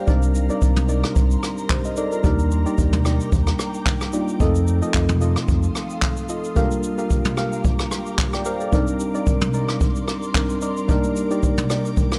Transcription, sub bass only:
0.08 0.50 C2 loud
0.62 1.04 C2 medium
1.16 1.37 C2 loud
2.24 2.66 D#2 loud
2.78 3.20 D#2 loud
3.32 3.53 D#2 loud
4.40 4.82 F2 loud
4.94 5.36 F2 loud
5.48 5.69 F2 medium

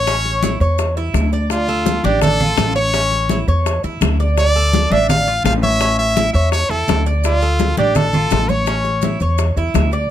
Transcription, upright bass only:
0.00 0.55 A1 medium
0.60 1.10 E2 medium
1.14 1.98 D2 medium
2.04 2.54 A1 medium
2.58 3.42 A1 medium
3.48 3.81 E2 medium
3.84 4.00 E2 medium
4.01 4.85 D2 medium
4.90 5.41 A1 medium
5.44 6.28 A1 medium
6.34 6.68 E2 medium
6.69 6.86 E2 medium
6.88 7.72 D2 medium
7.78 8.28 A1 medium
8.32 9.15 A1 medium
9.21 9.54 E2 medium
9.56 9.73 E2 medium
9.74 10.06 D2 medium

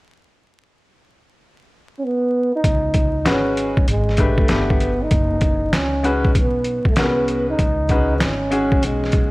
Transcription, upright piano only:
3.25 3.73 G#3 medium
3.25 3.73 C#4 medium
3.25 3.73 F#4 medium
3.25 3.73 B4 medium
4.18 4.47 A3 medium
4.18 4.48 D4 medium
4.18 4.48 G4 medium
4.18 4.49 B4 medium
4.49 4.88 A3 medium
4.49 4.88 D4 medium
4.49 4.89 G4 medium
4.49 4.89 B4 medium
6.03 6.28 G#3 medium
6.03 6.28 C#4 medium
6.03 6.29 F#4 medium
6.03 6.29 B4 medium
6.97 7.59 G#3 medium
6.97 7.59 C#4 medium
6.97 7.59 F#4 medium
6.97 7.06 A#4 soft
7.06 7.63 B4 medium
7.89 8.14 G#3 medium
7.89 8.14 C#4 medium
7.89 8.15 F#4 medium
7.89 8.15 B4 medium
8.51 9.31 G#3 medium
8.51 9.31 C#4 medium
8.51 9.31 F#4 medium
8.51 9.31 G#4 medium

